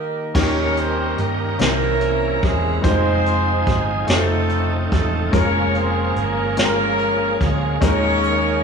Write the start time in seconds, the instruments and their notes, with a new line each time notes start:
Already playing: grand piano D#3 A#3 D#4 G4 D#5, horn section A#3 D#4 G4 A#4
0.34 fingered electric bass D#2, grand piano D#3 A#3 C#4 D#4 G4, tonewheel organ F3 C#4 D#4 A#4, horn section C#4 G4 A#4 C#5, kick, crash
0.42 tonewheel organ G3
0.77 horn section C4 C5, closed hi-hat
1.18 fingered electric bass G2, horn section A#3 A#4, closed hi-hat
1.59 fingered electric bass C2, grand piano C3 A#3 C#4 D#4 C5, tonewheel organ C3 E3 C#4 A#4, horn section A#3 E4 A#4, snare, closed hi-hat
1.63 horn section C#4, grand piano E4
2.01 closed hi-hat
2.43 fingered electric bass E1, horn section G#3 G#4, kick, closed hi-hat
2.81 fingered electric bass F1, tonewheel organ F3 C4 D#4 G4, grand piano G3 D#4 F4 C5, kick, closed hi-hat
2.86 grand piano G#3, horn section C4 D#4 G#4 C5
2.91 tonewheel organ G#4
3.26 closed hi-hat
3.67 fingered electric bass G1, kick, closed hi-hat
4.07 fingered electric bass F1, tonewheel organ C#3 F3 D#4 A4, grand piano A3 D#4 F4 C5, horn section A3 C4 D#4 A4, snare, closed hi-hat
4.15 grand piano C5
4.49 closed hi-hat
4.92 fingered electric bass E1, horn section A3 A4, kick, closed hi-hat
5.31 fingered electric bass F1, tonewheel organ F3 A#3 C#4 G#4, grand piano G#3 C#4 F4 A#4, horn section C#4 A#4 C#5, kick, closed hi-hat
5.35 horn section G#4
5.75 horn section C4 C5, closed hi-hat
6.16 fingered electric bass G1, horn section A#3 A#4, closed hi-hat
6.57 grand piano G#3 C#4 F4 A#4, horn section A#3 C#4 A#4, snare, closed hi-hat
6.99 closed hi-hat
7.41 fingered electric bass D2, horn section G#3 G#4, kick, closed hi-hat
7.81 fingered electric bass D#2, tonewheel organ D#3 A#3 C#4 G4, grand piano D#3 G#3 C#4 D#4 A#4, horn section C#4 G#4 A#4 C#5, kick, closed hi-hat
7.88 tonewheel organ G#4
8.23 closed hi-hat